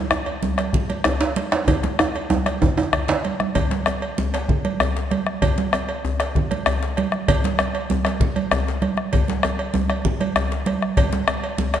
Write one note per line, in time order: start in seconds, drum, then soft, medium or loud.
0.11 bombo rim loud
0.11 cowbell soft
0.11 djembe slap soft
0.11 djembe tone medium
0.26 cowbell soft
0.43 high conga medium
0.43 djembe bass medium
0.58 bombo rim medium
0.58 cowbell soft
0.58 djembe slap medium
0.73 bombo low loud
0.73 low conga medium
0.90 cowbell soft
0.90 high conga medium
1.04 bombo rim loud
1.04 cowbell soft
1.04 djembe slap medium
1.04 high conga soft
1.04 djembe tone medium
1.04 djembe bass medium
1.21 djembe slap medium
1.36 bombo rim soft
1.36 cowbell soft
1.36 high conga medium
1.52 bombo rim medium
1.52 djembe slap medium
1.52 high conga soft
1.68 bombo rim soft
1.68 bombo low loud
1.68 cowbell medium
1.68 djembe tone medium
1.68 djembe bass medium
1.68 low conga medium
1.83 bombo rim soft
1.83 djembe slap medium
1.83 high conga medium
1.99 bombo rim medium
1.99 cowbell soft
1.99 djembe slap soft
1.99 djembe tone medium
1.99 djembe tone loud
1.99 high conga soft
2.15 cowbell soft
2.15 high conga soft
2.30 bombo rim soft
2.30 djembe tone loud
2.30 high conga medium
2.30 djembe bass medium
2.46 bombo rim medium
2.46 cowbell medium
2.46 djembe slap medium
2.46 high conga soft
2.62 bombo low loud
2.62 djembe slap soft
2.62 djembe tone loud
2.62 low conga medium
2.77 cowbell soft
2.77 djembe tone loud
2.77 low conga soft
2.93 bombo rim loud
2.93 cowbell medium
2.93 djembe slap soft
2.93 djembe bass medium
2.93 low conga soft
3.08 djembe slap medium
3.08 djembe slap loud
3.08 low conga medium
3.24 cowbell soft
3.24 djembe slap soft
3.24 high conga medium
3.40 bombo rim medium
3.40 high conga medium
3.55 bombo rim soft
3.55 bombo low loud
3.55 cowbell medium
3.55 djembe bass medium
3.55 low conga medium
3.71 djembe slap medium
3.71 high conga medium
3.86 bombo rim medium
3.86 cowbell soft
3.86 djembe slap soft
3.86 djembe tone medium
4.02 cowbell soft
4.18 high conga medium
4.18 djembe bass medium
4.34 cowbell medium
4.34 djembe slap medium
4.49 bombo low loud
4.49 low conga medium
4.65 cowbell soft
4.65 high conga medium
4.80 bombo rim medium
4.80 cowbell medium
4.80 high conga soft
4.80 djembe tone medium
4.80 djembe bass medium
4.96 djembe slap medium
5.11 bombo rim soft
5.11 cowbell soft
5.11 high conga medium
5.27 bombo rim medium
5.27 high conga soft
5.42 bombo rim soft
5.42 bombo low loud
5.42 cowbell medium
5.42 low conga medium
5.42 djembe bass medium
5.58 djembe slap medium
5.58 high conga medium
5.73 bombo rim medium
5.73 cowbell medium
5.73 djembe slap soft
5.73 djembe tone medium
5.89 cowbell medium
6.05 djembe bass medium
6.20 bombo rim medium
6.20 cowbell medium
6.20 djembe slap medium
6.35 bombo low loud
6.35 low conga medium
6.51 cowbell medium
6.51 high conga medium
6.66 bombo rim medium
6.66 cowbell medium
6.66 djembe tone medium
6.66 high conga soft
6.66 djembe bass medium
6.83 djembe slap medium
6.97 bombo rim soft
6.97 cowbell medium
6.97 high conga medium
7.12 bombo rim medium
7.12 high conga soft
7.28 bombo rim soft
7.28 bombo low loud
7.28 cowbell medium
7.28 low conga medium
7.28 djembe bass medium
7.44 djembe slap medium
7.44 high conga medium
7.59 bombo rim loud
7.59 cowbell medium
7.59 djembe slap soft
7.59 djembe tone medium
7.75 cowbell medium
7.90 high conga medium
7.90 djembe bass medium
8.05 bombo rim medium
8.05 cowbell medium
8.05 djembe slap medium
8.20 bombo low loud
8.20 low conga medium
8.36 cowbell soft
8.36 high conga medium
8.51 bombo rim medium
8.51 cowbell medium
8.51 high conga soft
8.51 djembe tone medium
8.51 djembe bass medium
8.68 djembe slap medium
8.82 bombo rim soft
8.82 cowbell soft
8.82 high conga medium
8.97 bombo rim medium
8.97 high conga soft
9.13 bombo low medium
9.13 cowbell medium
9.13 djembe slap soft
9.13 high conga soft
9.13 low conga medium
9.13 djembe bass medium
9.28 djembe slap medium
9.28 high conga medium
9.43 bombo rim medium
9.43 cowbell soft
9.43 djembe slap soft
9.43 djembe tone medium
9.59 cowbell medium
9.74 bombo rim soft
9.74 high conga medium
9.74 djembe bass medium
9.90 bombo rim medium
9.90 cowbell medium
10.05 bombo rim soft
10.05 bombo low loud
10.05 djembe slap soft
10.05 low conga medium
10.20 bombo rim soft
10.20 cowbell medium
10.20 high conga medium
10.36 bombo rim loud
10.36 cowbell medium
10.36 djembe tone medium
10.36 djembe bass medium
10.52 djembe slap medium
10.66 bombo rim soft
10.66 cowbell medium
10.66 high conga medium
10.82 bombo rim medium
10.97 bombo rim soft
10.97 bombo low loud
10.97 cowbell medium
10.97 djembe bass medium
10.97 low conga medium
11.12 djembe slap medium
11.12 high conga medium
11.28 bombo rim loud
11.28 cowbell medium
11.28 djembe slap soft
11.28 djembe tone medium
11.44 cowbell medium
11.58 high conga medium
11.58 djembe bass medium
11.74 bombo rim medium
11.74 cowbell medium
11.74 djembe slap medium